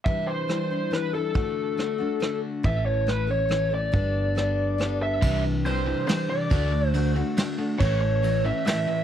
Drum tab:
CC |------|------|------|------|
RD |------|------|------|------|
SD |--r-r-|--r-r-|--r-r-|--r-r-|
BD |o-----|o-----|o-----|o-----|

CC |x-----|------|------|
RD |--x-x-|x-x-x-|x-x-x-|
SD |----o-|----o-|----o-|
BD |o-----|o-----|o-----|